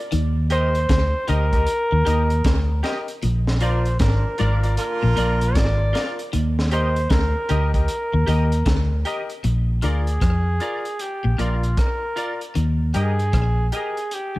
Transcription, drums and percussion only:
0.12 closed hi-hat medium
0.50 closed hi-hat medium
0.75 closed hi-hat soft
0.89 kick loud
0.89 snare loud
0.89 closed hi-hat medium
1.28 closed hi-hat medium
1.53 kick medium
1.53 closed hi-hat medium
1.67 closed hi-hat medium
2.06 closed hi-hat medium
2.30 closed hi-hat medium
2.44 kick loud
2.44 snare loud
2.44 closed hi-hat loud
2.84 snare medium
2.84 closed hi-hat medium
3.08 closed hi-hat medium
3.22 closed hi-hat medium
3.47 snare medium
3.60 closed hi-hat medium
3.85 closed hi-hat soft
3.99 kick loud
3.99 snare loud
3.99 closed hi-hat loud
4.38 closed hi-hat medium
4.63 closed hi-hat medium
4.77 closed hi-hat medium
5.17 closed hi-hat medium
5.41 closed hi-hat medium
5.55 kick loud
5.55 snare loud
5.55 closed hi-hat loud
5.95 snare medium
5.95 closed hi-hat medium
6.19 closed hi-hat medium
6.33 closed hi-hat medium
6.59 snare medium
6.71 closed hi-hat medium
6.96 closed hi-hat medium
7.10 kick loud
7.10 snare loud
7.10 closed hi-hat medium
7.49 closed hi-hat medium
7.74 kick medium
7.74 closed hi-hat medium
7.88 closed hi-hat medium
8.28 closed hi-hat medium
8.52 closed hi-hat medium
8.66 kick loud
8.66 snare loud
8.66 closed hi-hat medium
9.05 closed hi-hat medium
9.30 closed hi-hat soft
9.44 closed hi-hat medium
9.82 closed hi-hat medium
10.07 closed hi-hat soft
10.21 kick loud
10.21 cross-stick loud
10.21 closed hi-hat medium
10.60 closed hi-hat medium
10.85 closed hi-hat soft
10.99 closed hi-hat medium
11.39 closed hi-hat medium
11.63 closed hi-hat medium
11.77 kick loud
11.77 cross-stick loud
11.77 closed hi-hat medium
12.17 closed hi-hat medium
12.41 closed hi-hat soft
12.55 closed hi-hat medium
12.94 closed hi-hat medium
13.19 closed hi-hat soft
13.33 kick loud
13.33 cross-stick loud
13.33 closed hi-hat medium
13.72 closed hi-hat medium
13.97 closed hi-hat medium
14.11 closed hi-hat medium

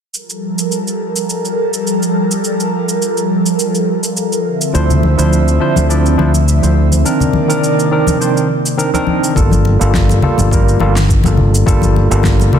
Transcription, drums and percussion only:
0.14 cabasa soft
0.30 cabasa soft
0.59 cabasa medium
0.72 cabasa soft
0.87 cabasa soft
1.16 cabasa medium
1.30 cabasa soft
1.45 cabasa soft
1.74 cabasa medium
1.87 cabasa soft
2.03 cabasa soft
2.31 cabasa medium
2.44 cabasa soft
2.60 cabasa soft
2.89 cabasa medium
3.02 cabasa soft
3.17 cabasa soft
3.46 cabasa medium
3.59 cabasa medium
3.75 cabasa soft
4.03 cabasa medium
4.17 cabasa medium
4.33 cabasa soft
4.61 cabasa medium
4.75 cabasa medium
4.90 low conga medium
4.90 cabasa soft
5.03 high conga medium
5.19 cabasa medium
5.33 cabasa soft
5.48 cabasa soft
5.76 high conga medium
5.76 cabasa medium
5.90 cabasa soft
6.06 cabasa soft
6.19 high conga medium
6.35 cabasa medium
6.48 cabasa medium
6.63 cabasa soft
6.92 high conga medium
6.92 cabasa medium
7.06 cabasa medium
7.20 low conga medium
7.20 cabasa soft
7.33 high conga medium
7.50 cabasa medium
7.64 cabasa soft
7.80 cabasa soft
8.07 high conga medium
8.07 cabasa medium
8.22 cabasa soft
8.37 cabasa soft
8.66 cabasa medium
8.79 cabasa soft
8.94 high conga medium
8.94 cabasa soft
9.07 high conga medium
9.24 cabasa medium
9.36 kick loud
9.36 cabasa medium
9.51 high conga medium
9.51 cabasa soft
9.65 muted conga medium
9.81 cabasa medium
9.94 kick loud
9.94 snare medium
9.94 high conga medium
9.94 cabasa soft
10.09 muted conga soft
10.09 cabasa soft
10.22 low conga medium
10.38 high conga medium
10.38 cabasa medium
10.51 kick loud
10.51 cabasa soft
10.68 cabasa soft
10.80 muted conga medium
10.80 high conga medium
10.96 snare medium
10.96 cabasa medium
11.09 kick medium
11.09 cabasa medium
11.24 muted conga soft
11.24 high conga medium
11.24 cabasa soft
11.37 low conga medium
11.55 cabasa medium
11.67 kick loud
11.67 cabasa medium
11.82 high conga medium
11.82 cabasa soft
11.96 muted conga medium
12.12 cabasa medium
12.23 kick medium
12.23 snare medium
12.23 high conga medium
12.23 cabasa soft
12.40 muted conga soft
12.40 cabasa soft
12.53 low conga medium

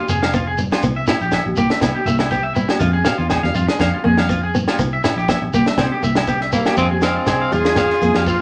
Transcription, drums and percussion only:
0.09 shekere loud
0.23 snare medium
0.23 low conga medium
0.23 low agogo medium
0.23 shekere soft
0.34 kick medium
0.34 shekere medium
0.58 low conga medium
0.58 shekere medium
0.72 snare medium
0.72 high conga medium
0.72 low agogo medium
0.72 shekere soft
0.82 kick medium
0.82 shekere medium
1.07 snare medium
1.07 high conga medium
1.07 low agogo medium
1.07 shekere medium
1.21 shekere soft
1.32 kick medium
1.32 snare medium
1.32 low agogo medium
1.32 shekere medium
1.46 high conga medium
1.56 low conga medium
1.56 shekere medium
1.70 snare medium
1.70 shekere soft
1.81 kick medium
1.81 snare medium
1.81 low agogo medium
1.81 shekere medium
1.96 high conga medium
2.07 shekere medium
2.19 snare medium
2.19 low conga medium
2.19 low agogo medium
2.19 shekere soft
2.31 kick medium
2.31 shekere medium
2.56 low conga medium
2.56 shekere medium
2.69 snare medium
2.69 high conga medium
2.69 low agogo medium
2.69 shekere soft
2.80 kick medium
2.80 shekere medium
2.94 high conga medium
3.05 snare medium
3.05 high conga medium
3.05 low agogo medium
3.05 shekere medium
3.19 shekere soft
3.30 kick medium
3.30 snare medium
3.30 low agogo medium
3.30 shekere medium
3.44 snare soft
3.44 high conga medium
3.55 low conga medium
3.55 shekere medium
3.68 snare medium
3.68 shekere soft
3.80 kick medium
3.80 snare medium
3.80 low agogo medium
3.80 shekere medium
3.94 high conga medium
4.17 snare medium
4.17 low conga medium
4.17 low agogo medium
4.17 shekere soft
4.29 kick medium
4.29 shekere medium
4.54 low conga medium
4.54 shekere medium
4.67 snare medium
4.67 high conga medium
4.67 low agogo medium
4.67 shekere soft
4.79 kick medium
4.79 shekere medium
5.04 snare medium
5.04 high conga soft
5.04 low agogo medium
5.04 shekere medium
5.18 shekere soft
5.28 kick medium
5.28 snare medium
5.28 low agogo medium
5.28 shekere medium
5.42 high conga medium
5.53 low conga medium
5.53 shekere medium
5.66 snare medium
5.66 shekere soft
5.78 kick medium
5.78 snare medium
5.78 low agogo medium
5.78 shekere medium
5.91 high conga medium
6.03 shekere loud
6.15 snare medium
6.15 low conga medium
6.15 low agogo medium
6.15 shekere soft
6.27 kick medium
6.27 shekere medium
6.41 snare soft
6.52 low conga medium
6.52 shekere medium
6.66 snare medium
6.66 high conga medium
6.66 low agogo medium
6.77 kick medium
6.77 shekere loud
6.91 high conga medium
7.02 snare medium
7.02 low agogo medium
7.02 shekere medium
7.27 kick medium
7.27 snare medium
7.27 low agogo medium
7.27 shekere medium
7.52 low conga medium
7.52 shekere medium
7.65 snare medium
7.65 shekere soft
7.76 kick medium
7.76 snare medium
7.76 low agogo medium
7.76 shekere medium
7.90 snare soft
8.02 shekere medium
8.14 snare medium
8.14 high conga medium
8.14 low agogo medium
8.26 kick medium
8.26 shekere medium

